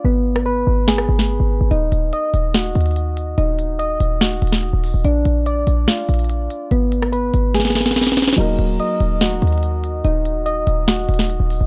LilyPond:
<<
  \new Staff \with { instrumentName = "Synth keys" } { \time 4/4 \key ees \minor \tempo 4 = 144 ces'4 ces''4 aes'2 | ees'4 ees''4 ges'2 | ees'4 ees''4 ges'2 | d'4 d''4 f'2 |
ces'4 ces''4 aes'2 | ees'4 ees''4 ges'2 | ees'4 ees''4 ges'2 | }
  \new Staff \with { instrumentName = "Grand piano" } { \time 4/4 \key ees \minor r1 | r1 | r1 | r1 |
r1 | <ges bes ees' ges' bes'>1~ | <ges bes ees' ges' bes'>1 | }
  \new Staff \with { instrumentName = "808-style bass" } { \clef bass \time 4/4 \key ees \minor aes,,4. aes,,4 aes,,8. aes,,8 aes,,16 | ees,,8 ees,,8 r8 ees,,4 ees,4. | ees,,4. ees,,4 ees,,8. ees,,8 ees,,16 | bes,,8 bes,,4 bes,,8 r8 bes,,4 r8 |
aes,,4. aes,,2~ aes,,8 | ees,,8 ees,,8 r8 ees,,4 ees,4. | ees,,4. ees,,4 ees,,8. ees,,8 ees,,16 | }
  \new DrumStaff \with { instrumentName = "Drums" } \drummode { \time 4/4 r8. ss16 r4 sn16 ss8 sn16 r4 | hh8 hh8 hh8 hh8 <hh sn>8 hh32 hh32 hh32 hh32 hh8 hh8 | hh8 hh8 hh8 hh8 <hh sn>8 hh32 hh32 <hh sn>32 hh32 hh8 hho8 | hh8 hh8 hh8 hh8 <hh sn>8 hh32 hh32 hh32 hh32 hh8 hh8 |
hh8 hh16 ss16 hh8 hh8 <hh sn>32 sn32 sn32 sn32 <hh sn>32 sn32 <hh sn>32 sn32 <hh sn>32 sn32 sn32 sn32 <hh hho sn>32 <hh sn>32 <hh sn>32 <hh sn>32 | cymc8 hh8 hh8 hh8 <hh sn>8 hh32 hh32 hh32 hh32 hh8 hh8 | hh8 hh8 hh8 hh8 <hh sn>8 hh32 hh32 <hh sn>32 hh32 hh8 hho8 | }
>>